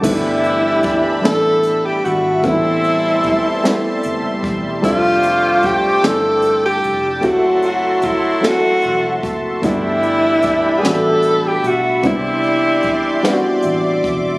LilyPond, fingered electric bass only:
\new Staff \with { instrumentName = "Fingered electric bass" } { \clef bass \time 6/8 \key g \major \tempo 4. = 50 g,,4. a,,4 aes,,8 | a,,4 r4 fis,,8 e,,8 | f,,4. g,,4 f,,8 | fis,,4 r4 e,,8 fis,,8 |
g,,4. a,,4 b,,8 | c,4 r4 a,,8 e,,8 | }